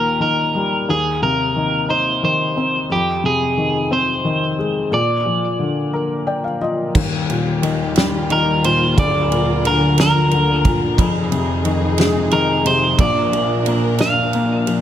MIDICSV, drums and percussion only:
0, 0, Header, 1, 2, 480
1, 0, Start_track
1, 0, Key_signature, -3, "major"
1, 0, Tempo, 672646
1, 632, Time_signature, 6, 3, 24, 8
1, 10569, End_track
2, 0, Start_track
2, 0, Title_t, "Drums"
2, 4959, Note_on_c, 9, 36, 115
2, 4959, Note_on_c, 9, 49, 94
2, 5030, Note_off_c, 9, 49, 0
2, 5031, Note_off_c, 9, 36, 0
2, 5206, Note_on_c, 9, 51, 41
2, 5278, Note_off_c, 9, 51, 0
2, 5445, Note_on_c, 9, 51, 50
2, 5516, Note_off_c, 9, 51, 0
2, 5677, Note_on_c, 9, 51, 57
2, 5692, Note_on_c, 9, 38, 103
2, 5748, Note_off_c, 9, 51, 0
2, 5763, Note_off_c, 9, 38, 0
2, 5923, Note_on_c, 9, 51, 39
2, 5994, Note_off_c, 9, 51, 0
2, 6167, Note_on_c, 9, 51, 55
2, 6239, Note_off_c, 9, 51, 0
2, 6406, Note_on_c, 9, 36, 107
2, 6407, Note_on_c, 9, 51, 69
2, 6477, Note_off_c, 9, 36, 0
2, 6478, Note_off_c, 9, 51, 0
2, 6648, Note_on_c, 9, 51, 44
2, 6720, Note_off_c, 9, 51, 0
2, 6886, Note_on_c, 9, 51, 53
2, 6958, Note_off_c, 9, 51, 0
2, 7119, Note_on_c, 9, 51, 61
2, 7134, Note_on_c, 9, 38, 114
2, 7191, Note_off_c, 9, 51, 0
2, 7205, Note_off_c, 9, 38, 0
2, 7359, Note_on_c, 9, 51, 38
2, 7431, Note_off_c, 9, 51, 0
2, 7599, Note_on_c, 9, 36, 94
2, 7599, Note_on_c, 9, 51, 53
2, 7670, Note_off_c, 9, 36, 0
2, 7670, Note_off_c, 9, 51, 0
2, 7837, Note_on_c, 9, 36, 112
2, 7839, Note_on_c, 9, 51, 77
2, 7909, Note_off_c, 9, 36, 0
2, 7910, Note_off_c, 9, 51, 0
2, 8077, Note_on_c, 9, 51, 48
2, 8148, Note_off_c, 9, 51, 0
2, 8312, Note_on_c, 9, 51, 50
2, 8384, Note_off_c, 9, 51, 0
2, 8547, Note_on_c, 9, 51, 63
2, 8561, Note_on_c, 9, 38, 99
2, 8618, Note_off_c, 9, 51, 0
2, 8633, Note_off_c, 9, 38, 0
2, 8787, Note_on_c, 9, 51, 39
2, 8858, Note_off_c, 9, 51, 0
2, 9031, Note_on_c, 9, 51, 57
2, 9102, Note_off_c, 9, 51, 0
2, 9267, Note_on_c, 9, 36, 117
2, 9267, Note_on_c, 9, 51, 73
2, 9338, Note_off_c, 9, 36, 0
2, 9338, Note_off_c, 9, 51, 0
2, 9513, Note_on_c, 9, 51, 44
2, 9584, Note_off_c, 9, 51, 0
2, 9747, Note_on_c, 9, 51, 55
2, 9818, Note_off_c, 9, 51, 0
2, 9979, Note_on_c, 9, 51, 56
2, 9994, Note_on_c, 9, 38, 97
2, 10051, Note_off_c, 9, 51, 0
2, 10065, Note_off_c, 9, 38, 0
2, 10226, Note_on_c, 9, 51, 39
2, 10297, Note_off_c, 9, 51, 0
2, 10468, Note_on_c, 9, 51, 51
2, 10539, Note_off_c, 9, 51, 0
2, 10569, End_track
0, 0, End_of_file